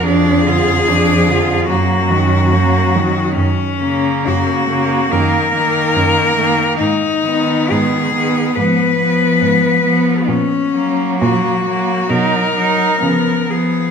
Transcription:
<<
  \new Staff \with { instrumentName = "Cello" } { \time 4/4 \key fis \major \tempo 4 = 70 aes'2 fis'2 | cis'4 fis'4 ais'2 | dis'4 gis'4 ces''2 | cis'4 fis'4 ais'4. gis'8 | }
  \new Staff \with { instrumentName = "Cello" } { \time 4/4 \key fis \major d'8 f'8 d'8 f'8 ais8 fis8 ais8 fis8 | r8 ais4 ais8 ais8 ais4 ais8 | r8 b4 b8 ces'8 ces'4 ces'8 | r8 ais4 ais8 dis'8 dis'8 b8 b8 | }
  \new Staff \with { instrumentName = "Cello" } { \clef bass \time 4/4 \key fis \major f8 d8 f8 d8 fis8 dis8 fis8 dis8 | r8 cis4 cis8 dis8 dis4 dis8 | r8 dis4 dis8 f8 f4 f8 | r8 fis4 fis8 fis8 fis8 eis8 eis8 | }
  \new Staff \with { instrumentName = "Cello" } { \clef bass \time 4/4 \key fis \major f,2 fis,2 | fis,4 fis,4 fis,4 fis,4 | gis,4 gis,4 aes,4 aes,4 | ais,4 ais,4 b,4 cis4 | }
>>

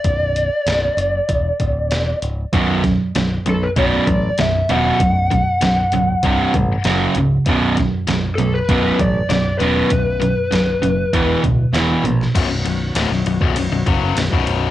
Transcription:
<<
  \new Staff \with { instrumentName = "Lead electric guitar" } { \time 4/4 \key b \minor \tempo 4 = 98 d''2.~ d''8 r8 | r4. a'16 b'16 d''4 e''8 fis''8~ | fis''2.~ fis''8 r8 | r4. a'16 b'8. d''8 d''8 b'8~ |
b'2~ b'8 r4. | r1 | }
  \new Staff \with { instrumentName = "Tonewheel organ" } { \time 4/4 \key b \minor r1 | r1 | r1 | r1 |
r1 | <b fis' cis''>1 | }
  \new Staff \with { instrumentName = "Distorted electric guitar" } { \clef bass \time 4/4 \key b \minor r1 | <b,, fis, b,>8 <b,, fis,>8 <b,, fis,>8 <b,, fis,>8 <b,, fis, b,>8 <b,, fis,>8 <b,, fis,>8 <b,, fis, b,>8 | <b,, fis,>8 <b,, fis,>8 <b,, fis,>8 <b,, fis,>8 <c, g, c>8 <c, g,>8 <fis, cis fis>8 <fis, cis>8 | <b,, fis, b,>8 <b,, fis,>8 <b,, fis,>8 <b,, fis,>8 <b,, fis, b,>8 <b,, fis,>8 <b,, fis,>8 <b,, fis, b,>8 |
<b,, fis,>8 <b,, fis,>8 <b,, fis,>8 <b,, fis,>8 <e, b, e>8 <e, b,>8 <e, b, e>8 <e, b,>8 | <b,, fis,>16 <b,, fis,>16 <b,, fis,>8 <d, a,>16 <b,, fis,>16 <b,, fis,>16 <b,, fis,>16 <b,, fis,>16 <b,, fis,>16 <fis, cis fis>8 <b,, fis,>16 <b,, fis, b,>8. | }
  \new Staff \with { instrumentName = "Overdriven electric guitar" } { \clef bass \time 4/4 \key b \minor r1 | <b,, fis, b,>8 <b,, fis,>8 <b,, fis,>8 <b,, fis,>8 <b,, fis, b,>8 <b,, fis,>8 <b,, fis,>8 <b,, fis, b,>8 | <b,, fis,>8 <b,, fis,>8 <b,, fis,>8 <b,, fis,>8 <c, g, c>8 <c, g,>8 <fis, cis fis>8 <fis, cis>8 | <b,, fis, b,>8 <b,, fis,>8 <b,, fis,>8 <b,, fis,>8 <b,, fis, b,>8 <b,, fis,>8 <b,, fis,>8 <b,, fis, b,>8 |
<b,, fis,>8 <b,, fis,>8 <b,, fis,>8 <b,, fis,>8 <e, b, e>8 <e, b,>8 <e, b, e>8 <e, b,>8 | r1 | }
  \new Staff \with { instrumentName = "Picked electric bass" } { \clef bass \time 4/4 \key b \minor b,,,4 b,,,8 fis,,8 e,,8 d,,8 e,,8 cis,,8 | b,,,4 b,,,8 b,,8 b,,,8 a,,8 b,,,8 e,,8 | b,,,4 b,,,8 cis,,8 c,,8 a,,8 fis,,8 cis,,8 | b,,,4 b,,,8 b,,8 b,,,8 a,,8 b,,,8 e,,8 |
b,,,4 b,,,8 fis,,8 e,,8 d,,8 e,,8 ais,,8 | b,,,16 b,,,16 b,,,8 d,,16 b,,,16 b,,,16 b,,,16 b,,,16 b,,,16 fis,,8 b,,,16 b,,,8. | }
  \new DrumStaff \with { instrumentName = "Drums" } \drummode { \time 4/4 <hh bd>8 hh8 <hh sn>8 hh8 <hh bd>8 <hh bd>8 <hh sn>8 hh8 | <hh bd>8 <hh bd sn>8 <hh sn>8 hh8 <hh bd>8 <hh bd>8 <hh sn>8 hh8 | <hh bd>8 <hh bd>8 <hh sn>8 hh8 <hh bd>8 <hh bd>8 <hh sn>8 hh8 | <hh bd>8 <hh bd sn>8 <hh sn>8 hh8 <hh bd>8 <hh bd>8 <hh sn>8 hh8 |
<hh bd>8 hh8 <hh sn>8 hh8 <hh bd>8 <hh bd>8 <hh sn>8 hh16 sn16 | <cymc bd cymr>8 cymr8 <cymr sn>16 sn16 cymr16 bd16 cymr8 <bd cymr>8 <cymr sn>16 bd16 cymr8 | }
>>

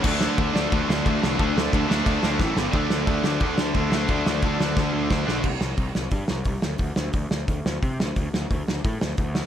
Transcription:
<<
  \new Staff \with { instrumentName = "Distorted electric guitar" } { \time 4/4 \key d \dorian \tempo 4 = 177 <d a d'>8 <d a d'>8 <d a d'>8 <d a d'>8 <d a d'>8 <d a d'>8 <d a d'>8 <d a d'>8 | <d a d'>8 <d a d'>8 <d a d'>8 <d a d'>8 <d a d'>8 <d a d'>8 <a, e a>8 <g, d g>8 | <d a d'>4 <d a d'>8 <d a d'>8 <d a d'>4 <d a d'>8 <d a d'>8 | <d a d'>4 <d a d'>8 <d a d'>8 <d a d'>4 <d a d'>8 <d a d'>8 |
\key d \minor r1 | r1 | r1 | }
  \new Staff \with { instrumentName = "Overdriven electric guitar" } { \time 4/4 \key d \dorian <d a d'>4. <d a d'>2~ <d a d'>8 | <d a d'>4. <d a d'>4. r4 | <d a d'>2.~ <d a d'>8 <d a d'>8 | <d a d'>2.~ <d a d'>8 <d a d'>8 |
\key d \minor r1 | r1 | r1 | }
  \new Staff \with { instrumentName = "Picked electric bass" } { \clef bass \time 4/4 \key d \dorian d,4 d,8 d,8 d,8 d,8 d,8 c,8 | d,8 d,8 d,8 d,8 d,8 d,8 a,,8 g,,8 | d,8 d,8 d,8 d,8 d,8 d,8 d,8 d,8 | d,8 d,8 d,8 d,8 d,8 d,8 d,8 b,,8 |
\key d \minor c,8 c,8 c,8 c,8 g,8 c,8 c,8 d,8 | d,8 d,8 d,8 d,8 d,8 d,8 c8 d,8 | d,8 d,8 d,8 d,8 a,8 d,8 d,4 | }
  \new DrumStaff \with { instrumentName = "Drums" } \drummode { \time 4/4 <cymc bd>8 sn8 <bd cymr>8 sn8 <bd cymr>8 sn8 <bd cymr>8 sn8 | <bd cymr>8 sn8 <bd cymr>8 sn8 <bd cymr>8 sn8 <bd sn>8 sn8 | <cymc bd>8 sn8 <cymc bd>8 sn8 <cymc bd>8 sn8 <cymc bd>8 sn8 | <cymc bd>8 sn8 <cymc bd>8 sn8 <bd sn>4 <bd sn>8 sn8 |
<cymc bd>8 sn8 <hho bd>8 sn8 <hho bd>8 sn8 <hho bd>8 sn8 | <hho bd>8 sn8 <hho bd>8 sn8 <hho bd>8 sn8 <hho bd>8 sn8 | <hho bd>8 sn8 <hho bd>8 sn8 <hho bd>8 sn8 <hho bd>8 sn8 | }
>>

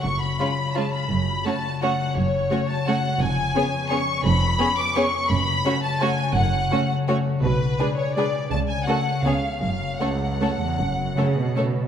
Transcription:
<<
  \new Staff \with { instrumentName = "Violin section" } { \time 3/4 \key fis \minor \tempo 4 = 167 cis'''8 b''4. a''8 b''8~ | b''4 a''4 fis''4 | cis''4. a''8 fis''4 | gis''2 cis'''4 |
b''4. d'''8 cis'''4 | b''4. a''8 gis''4 | fis''4. r4. | b'4. cis''8 d''4 |
a''8 gis''8 fis''4 eis''4 | eis''4 fis''2~ | fis''2 r4 | }
  \new Staff \with { instrumentName = "Violin section" } { \time 3/4 \key fis \minor r4 <eis' cis''>4 <eis' cis''>4 | r4 <fis' cis''>4 <fis' cis''>4 | r4 <fis' cis''>4 <fis' cis''>4 | r4 <gis' cis''>4 <gis' cis''>4 |
r4 <gis' cis''>4 <gis' cis''>4 | r4 <fis' cis''>4 <fis' cis''>4 | r4 <fis' cis''>4 <fis' cis''>4 | r4 <gis' b'>4 <gis' b'>4 |
r4 <fis' a'>4 <gis' cis''>4 | r4 <a' cis''>4 <a' cis''>4 | r4 <a' cis''>4 <a' cis''>4 | }
  \new Staff \with { instrumentName = "Harp" } { \time 3/4 \key fis \minor <fis, cis''>8 cis8 eis'8 cis''8 gis'8 eis'8 | fis,8 cis8 fis'8 cis''8 fis'8 cis'8 | fis,8 cis8 fis'8 cis''8 fis'8 cis'8 | eis,8 eis8 cis'8 b'8 cis''8 cis'8 |
eis,8 eis8 cis'8 b'8 cis''8 cis'8 | fis,8 cis8 cis'8 a'4 cis'8 | fis,8 cis8 cis'8 a'8 cis''8 cis'8 | b,8 b8 d'8 gis'8 b'8 d'8 |
cis8 a8 a'8 cis''8 cis8 <cis' gis'>8 | fis,8 cis8 cis'8 a'8 cis'8 a8 | fis,8 cis8 cis'8 a'8 cis'8 a8 | }
  \new Staff \with { instrumentName = "Viola section" } { \time 3/4 \key fis \minor r4 <gis cis'>4 <gis cis'>4 | r4 <a cis'>4 <a cis'>4 | r4 <a cis'>4 <a cis'>4 | r4 <b cis'>4 <b cis'>4 |
r4 <b cis'>4 <b cis'>4 | r4 <a cis'>4 <a cis'>4 | r4 <a cis'>4 <a cis'>4 | r4 <gis d'>4 <gis d'>4 |
r4 <a cis'>4 <b cis'>4 | r4 <a cis'>4 <a cis'>4 | r4 <a cis'>4 <a cis'>4 | }
  \new Staff \with { instrumentName = "Cello section" } { \clef bass \time 3/4 \key fis \minor fis,4 r2 | fis,4 r2 | fis,4 r2 | eis,4 r2 |
eis,4 r2 | fis,4 r2 | fis,4 r2 | b,4 r2 |
cis4 r4 cis4 | fis,4 cis,4. e,8 | fis,4 cis8 b,4. | }
  \new Staff \with { instrumentName = "Double bass section" } { \clef bass \time 3/4 \key fis \minor fis,,4 r2 | fis,,4 r2 | fis,,4 r2 | eis,,4 r2 |
eis,,4 r2 | fis,,4 r2 | fis,,4 r2 | b,,4 r2 |
cis,4 r4 cis,4 | fis,,4 r2 | fis,,4 r2 | }
>>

